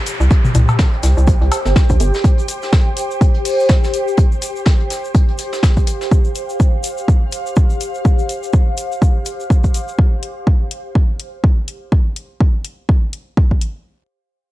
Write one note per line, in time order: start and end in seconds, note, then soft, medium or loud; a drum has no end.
0.00 9.98 G4 medium
0.00 9.99 C5 medium
0.00 5.52 G5 medium
0.00 downlifter medium
0.06 closed hi-hat medium
0.06 shaker medium
0.20 0.29 C2 medium
0.20 shaker soft
0.30 kick loud
0.30 closed hi-hat medium
0.30 shaker soft
0.45 mid tom medium
0.45 shaker soft
0.55 0.66 C2 loud
0.55 closed hi-hat medium
0.55 high tom medium
0.55 shaker medium
0.69 high tom medium
0.69 cowbell medium
0.69 shaker soft
0.79 kick loud
0.79 snare loud
0.79 closed hi-hat medium
0.79 shaker medium
0.93 closed hi-hat soft
1.03 1.14 C2 loud
1.03 snare soft
1.03 closed hi-hat medium
1.03 shaker medium
1.17 1.36 C2 medium
1.17 shaker soft
1.27 kick loud
1.27 closed hi-hat medium
1.27 shaker medium
1.41 1.50 C2 medium
1.41 closed hi-hat soft
1.51 closed hi-hat medium
1.51 cowbell medium
1.51 shaker medium
1.65 1.74 G1 medium
1.65 snare medium
1.65 shaker soft
1.76 kick loud
1.76 snare loud
1.76 closed hi-hat medium
1.76 shaker soft
1.89 1.98 A#1 medium
1.89 kick medium
1.89 closed hi-hat soft
1.89 shaker soft
2.00 2.11 G1 loud
2.00 closed hi-hat medium
2.00 shaker loud
2.14 snare soft
2.14 shaker soft
2.24 kick loud
2.24 closed hi-hat medium
2.24 shaker medium
2.38 closed hi-hat soft
2.38 shaker soft
2.48 closed hi-hat medium
2.48 shaker loud
2.62 snare soft
2.62 shaker soft
2.72 kick loud
2.72 snare loud
2.72 closed hi-hat medium
2.72 shaker medium
2.97 closed hi-hat loud
2.97 closed hi-hat medium
2.97 shaker medium
3.11 shaker soft
3.21 kick loud
3.21 closed hi-hat medium
3.21 shaker soft
3.34 closed hi-hat soft
3.45 closed hi-hat loud
3.45 open hi-hat medium
3.45 shaker medium
3.60 shaker soft
3.69 kick loud
3.69 snare loud
3.69 closed hi-hat medium
3.69 shaker medium
3.83 snare soft
3.83 shaker soft
3.94 closed hi-hat medium
3.94 shaker medium
4.08 shaker soft
4.17 kick loud
4.17 closed hi-hat medium
4.17 shaker medium
4.32 shaker soft
4.42 closed hi-hat medium
4.42 shaker medium
4.56 shaker soft
4.66 kick loud
4.66 snare loud
4.66 closed hi-hat medium
4.66 shaker soft
4.80 closed hi-hat soft
4.90 snare soft
4.90 closed hi-hat medium
4.90 shaker medium
5.05 shaker soft
5.14 kick loud
5.14 closed hi-hat medium
5.14 shaker soft
5.28 closed hi-hat soft
5.37 9.99 F5 medium
5.37 closed hi-hat medium
5.37 shaker medium
5.53 snare soft
5.53 shaker soft
5.63 kick loud
5.63 snare loud
5.63 closed hi-hat medium
5.63 shaker medium
5.76 kick medium
5.76 closed hi-hat soft
5.76 shaker soft
5.87 closed hi-hat medium
5.87 shaker medium
6.01 snare soft
6.01 shaker soft
6.11 kick loud
6.11 shaker soft
6.24 shaker soft
6.35 closed hi-hat medium
6.35 shaker medium
6.49 shaker soft
6.60 kick loud
6.60 shaker soft
6.83 closed hi-hat medium
6.83 shaker medium
6.98 shaker soft
7.08 kick loud
7.08 shaker soft
7.32 closed hi-hat medium
7.32 shaker medium
7.46 shaker soft
7.56 kick loud
7.56 shaker soft
7.70 shaker soft
7.81 closed hi-hat medium
7.81 shaker medium
7.95 shaker soft
8.05 kick loud
8.05 shaker soft
8.19 shaker soft
8.29 closed hi-hat medium
8.29 shaker medium
8.43 shaker soft
8.53 kick loud
8.53 shaker soft
8.77 closed hi-hat medium
8.77 shaker medium
8.92 shaker soft
9.02 kick loud
9.02 shaker soft
9.26 closed hi-hat medium
9.26 shaker medium
9.40 shaker soft
9.50 kick loud
9.50 shaker soft
9.64 kick medium
9.64 shaker soft
9.74 closed hi-hat medium
9.74 shaker medium
9.88 shaker soft
9.99 kick loud
10.23 closed hi-hat medium
10.47 kick loud
10.71 closed hi-hat medium
10.95 kick loud
11.20 closed hi-hat medium
11.44 kick loud
11.68 closed hi-hat medium
11.92 kick loud
12.16 closed hi-hat medium
12.40 kick loud
12.65 closed hi-hat medium
12.89 kick loud
13.13 closed hi-hat medium
13.37 kick loud
13.51 kick medium
13.61 closed hi-hat medium